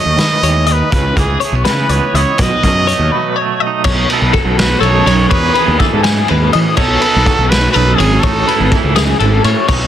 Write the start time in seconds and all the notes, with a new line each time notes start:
Already playing: D#3 F#3 A3 C#5 D#5
0.06 D#2
0.16 D#3 F#3 B4, snare, closed hi-hat
0.43 D#2 E3 C#5, closed hi-hat
0.66 D#3 D#5, closed hi-hat
0.72 B4
0.91 C#2 C#3 B4, kick, closed hi-hat
1.16 C#2 E3 G#4, kick, closed hi-hat
1.40 A3 G#4 C#5, closed hi-hat
1.52 B1 B3
1.64 C#3 E3 B4, snare, closed hi-hat
1.89 C#2 B3 C#5, closed hi-hat
2.14 C#2 E4 C#5 D#5, closed hi-hat
2.38 B1 B2 B4 D#5, kick, closed hi-hat
2.63 F#2 F#3 G#4, kick, closed hi-hat
2.87 C#5, closed hi-hat
2.91 A3
2.99 D#2
3.12 F#3 B4
3.36 C#5
3.41 A3
3.60 D#5
3.67 D#4
3.84 B1 C#5, kick, crash
3.90 B2 D#4
4.09 A4 B4, ride
4.22 B1
4.33 F#3 A4, kick, ride
4.45 B1
4.57 F#4 B4, snare, ride
4.80 B1 A4 C#5, ride
4.86 F#2 D#4
5.06 B1 C#5, ride
5.29 E2 B4 C#5, kick, ride
5.33 E3 B3 D#4 G#4
5.54 G#4 B4, ride
5.68 D#2
5.79 E3 A4, kick, ride
5.93 G#2
6.03 F#2 G#4, snare, ride
6.28 D#2 G#2 B4, ride
6.53 A2 E3 D#5, ride
6.77 B1 B2 D#4 A4 C#5, kick, crash
7.01 D#4 B4, ride
7.16 B1
7.25 F#3 A4, kick, ride
7.39 B1
7.49 F#4 B4, snare, ride
7.72 B1 F#2 A4 B4, ride
7.76 D#4
7.95 G#4 C#5
7.99 G#1, ride
8.20 A4 C#5, kick, ride
8.25 A2 D#4
8.48 E4 B4, ride
8.60 G#1
8.72 E3 A4, kick, ride
8.84 C#2
8.96 F#2 G#4, snare, ride
9.20 G#1 G#2 A4, ride
9.44 A2 C#5, ride
9.68 B1 B2 D#4 C#5, kick, crash